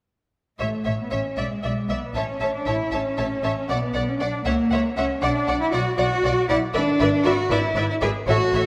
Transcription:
0.59 0.68 A1 soft
0.59 0.96 A3 medium
0.59 0.67 C#5 soft
0.59 0.67 E5 soft
0.59 0.68 E5 soft
0.85 0.94 A1 soft
0.85 0.93 C#5 soft
0.85 0.93 E5 soft
0.99 1.12 B3 medium
1.11 1.20 A1 soft
1.11 1.38 C#4 medium
1.11 1.19 C#5 soft
1.11 1.19 E5 soft
1.37 1.46 B1 medium
1.37 1.89 G#3 medium
1.37 1.46 D5 soft
1.37 1.45 E5 soft
1.64 1.72 B1 medium
1.64 1.72 D5 soft
1.64 1.72 E5 soft
1.89 1.98 B1 medium
1.89 2.15 B3 medium
1.89 1.97 D5 soft
1.89 1.97 E5 soft
2.15 2.24 A1 medium
2.15 2.54 C#4 medium
2.15 2.24 C#5 soft
2.15 2.23 E5 soft
2.15 2.23 A5 soft
2.41 2.50 A1 soft
2.41 2.50 C#5 soft
2.41 2.49 E5 soft
2.41 2.49 A5 soft
2.55 2.67 D4 medium
2.66 2.76 A1 soft
2.66 2.92 E4 medium
2.66 2.75 C#5 soft
2.66 2.74 E5 soft
2.66 2.75 A5 soft
2.92 3.01 A1 medium
2.92 3.68 C#4 medium
2.92 3.01 C#5 soft
2.92 3.00 E5 soft
2.92 3.00 A5 soft
3.18 3.27 A1 medium
3.18 3.26 C#5 soft
3.18 3.26 E5 soft
3.18 3.26 A5 soft
3.44 3.52 A1 medium
3.44 3.52 C#5 soft
3.44 3.52 E5 soft
3.44 3.52 A5 soft
3.69 3.78 B1 medium
3.69 4.07 B3 medium
3.69 3.77 D5 medium
3.69 3.78 D5 medium
3.69 3.77 F#5 medium
3.94 4.03 B1 medium
3.94 4.02 D5 soft
3.94 4.03 D5 soft
3.94 4.02 F#5 soft
4.08 4.20 C#4 medium
4.20 4.28 B1 medium
4.20 4.45 D4 medium
4.20 4.28 D5 soft
4.20 4.29 D5 medium
4.20 4.28 F#5 soft
4.45 4.54 C#2 medium
4.45 4.96 A#3 medium
4.45 4.54 C#5 medium
4.45 4.53 E5 medium
4.45 4.53 F#5 medium
4.71 4.79 C#2 medium
4.71 4.80 C#5 medium
4.71 4.80 E5 soft
4.71 4.79 F#5 medium
4.97 5.05 C#2 medium
4.97 5.22 C#4 medium
4.97 5.06 C#5 soft
4.97 5.05 E5 soft
4.97 5.05 F#5 medium
5.22 5.31 B1 medium
5.22 5.60 D4 medium
5.22 5.31 D5 medium
5.22 5.30 F#5 medium
5.48 5.57 B1 medium
5.48 5.56 D5 medium
5.48 5.56 F#5 medium
5.61 5.73 E4 medium
5.73 5.82 B1 medium
5.73 5.97 F#4 medium
5.73 5.81 D5 medium
5.73 5.82 F#5 medium
5.97 6.07 B1 medium
5.97 6.48 F#4 loud
5.97 6.05 D5 medium
5.97 6.06 D5 medium
5.97 6.06 F#5 medium
6.24 6.32 B1 medium
6.24 6.32 D5 medium
6.24 6.33 D5 medium
6.24 6.32 F#5 medium
6.49 6.58 B1 medium
6.49 6.57 E4 medium
6.49 6.57 D5 medium
6.49 6.57 F#5 medium
6.74 6.83 G#1 medium
6.74 7.24 D4 loud
6.74 6.83 B4 medium
6.74 6.82 D5 medium
6.74 6.82 E5 medium
7.00 7.08 G#1 medium
7.00 7.09 B4 medium
7.00 7.08 D5 medium
7.00 7.08 E5 medium
7.25 7.33 G#1 medium
7.25 7.51 F#4 loud
7.25 7.33 B4 medium
7.25 7.33 D5 medium
7.25 7.33 E5 medium
7.50 7.59 G#1 medium
7.50 7.89 E4 medium
7.50 7.58 B4 medium
7.50 7.59 D5 medium
7.50 7.59 E5 medium
7.76 7.85 G#1 medium
7.76 7.85 B4 medium
7.76 7.84 D5 medium
7.76 7.85 E5 medium
7.90 7.95 E4 medium
8.01 8.11 G#1 medium
8.01 8.10 G#4 medium
8.01 8.10 B4 medium
8.01 8.09 D5 medium
8.01 8.10 E5 medium
8.27 8.37 A1 medium
8.27 8.66 F#4 loud
8.27 8.37 A4 medium
8.27 8.35 C#5 medium
8.27 8.37 E5 medium
8.53 8.62 A1 medium
8.53 8.63 A4 medium
8.53 8.61 C#5 medium
8.53 8.63 E5 medium

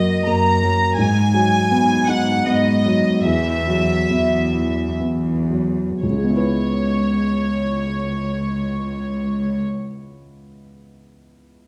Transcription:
0.00 0.18 F#2 soft
0.00 0.95 F#2 soft
0.00 0.63 F#3 soft
0.00 0.12 A#3 soft
0.00 0.49 F#4 soft
0.00 0.23 D#5 medium
0.26 0.90 F#2 soft
0.26 0.84 A#3 soft
0.26 0.98 A#5 medium
0.63 0.98 F#3 soft
0.97 1.62 G#2 soft
0.97 3.21 G#2 soft
0.97 2.05 G#5 medium
1.34 1.93 F#3 soft
1.71 2.37 G#2 soft
1.71 2.31 B3 soft
2.08 2.70 D#4 soft
2.08 2.46 F#5 medium
2.46 3.15 G#2 soft
2.46 3.09 B3 soft
2.46 3.25 D#5 medium
2.86 3.25 F#3 soft
3.25 5.99 E2 soft
3.25 4.00 E2 medium
3.25 4.98 E5 medium
3.68 4.37 F#3 soft
4.10 4.91 E2 soft
4.10 4.82 B3 soft
4.54 5.31 E4 soft
5.00 5.92 E2 soft
5.00 5.82 B3 soft
5.51 6.03 F#3 soft
6.03 9.59 C#2 soft
6.03 9.59 C#5 soft
6.10 9.66 C#3 soft
6.17 9.73 G#3 soft
6.24 9.80 B3 soft
6.30 9.87 E4 soft
6.37 9.94 B4 soft

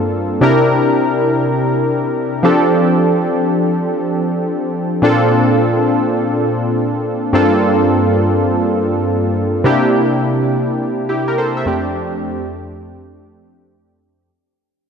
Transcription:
0.00 0.37 G2 medium
0.00 0.41 A#3 medium
0.00 0.38 C4 medium
0.00 0.38 D4 medium
0.00 0.38 F4 medium
0.00 0.38 A4 loud
0.41 2.39 C3 medium
0.41 2.39 D4 medium
0.41 2.40 E4 medium
0.41 2.40 G4 medium
0.41 2.40 A#4 medium
2.43 4.70 F3 medium
2.43 4.70 C4 medium
2.43 4.71 D4 medium
2.43 4.71 G4 medium
2.43 4.71 A4 medium
5.02 7.29 A#2 medium
5.02 7.30 C4 medium
5.02 7.30 D4 medium
5.02 7.30 F4 medium
5.02 7.31 A4 medium
7.33 9.60 G2 medium
7.33 9.60 A#3 medium
7.33 9.61 C4 medium
7.33 9.61 D4 medium
7.33 9.61 F4 medium
7.33 9.61 A4 medium
9.64 11.62 C3 medium
9.64 11.62 A#3 medium
9.64 11.63 D4 medium
9.64 11.06 E4 medium
9.64 11.07 G4 medium
11.09 11.27 E4 medium
11.09 11.27 G4 medium
11.28 11.38 G4 medium
11.28 11.37 A#4 medium
11.38 11.56 A4 medium
11.38 11.56 C5 medium
11.57 11.84 C5 medium
11.57 11.84 E5 medium
11.66 13.93 F2 medium
11.66 13.93 A3 medium
11.66 13.93 C4 medium
11.66 13.94 D4 medium
11.66 13.94 G4 medium

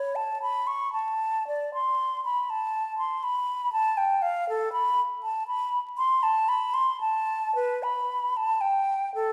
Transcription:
0.00 0.17 C#5 medium
0.15 0.41 A5 medium
0.42 0.68 B5 medium
0.67 0.92 C#6 medium
0.93 1.47 A5 medium
1.47 1.73 D5 loud
1.74 2.23 C6 medium
2.25 2.51 B5 medium
2.50 2.98 A5 loud
2.98 3.25 C6 medium
3.23 3.72 B5 loud
3.73 3.99 A5 loud
3.97 4.23 G5 medium
4.22 4.47 F5 loud
4.49 4.72 A4 loud
4.72 5.00 B5 loud
5.23 5.47 A5 medium
5.47 5.80 B5 medium
5.98 6.24 C6 loud
6.23 6.50 A5 loud
6.48 6.75 B5 loud
6.74 7.00 C6 loud
7.01 7.54 A5 loud
7.55 7.84 B4 loud
7.83 8.38 B5 medium
8.37 8.62 A5 loud
8.61 9.13 G5 loud
9.15 9.33 A4 loud

